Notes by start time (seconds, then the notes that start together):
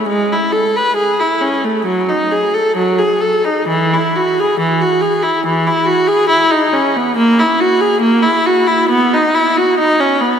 0.08 G#3
0.32 E4
0.52 A4
0.77 B4
0.96 G#4
1.20 E4
1.41 C#4
1.65 A3
1.85 F#3
2.08 D#4
2.31 G#4
2.54 A4
2.76 F#3
2.99 G#4
3.21 A4
3.45 D#4
3.68 E3
3.93 E4
4.15 F#4
4.40 G#4
4.59 E3
4.81 F#4
5.01 G#4
5.23 E4
5.46 E3
5.67 E4
5.85 F#4
6.08 G#4
6.29 E4
6.51 D#4
6.73 C#4
6.96 B3
7.17 A#3
7.39 E4
7.60 F#4
7.80 G#4
8.02 A#3
8.22 E4
8.46 F#4
8.67 E4
8.89 B3
9.13 D#4
9.35 E4
9.57 F#4
9.79 D#4
10.00 C#4
10.21 B3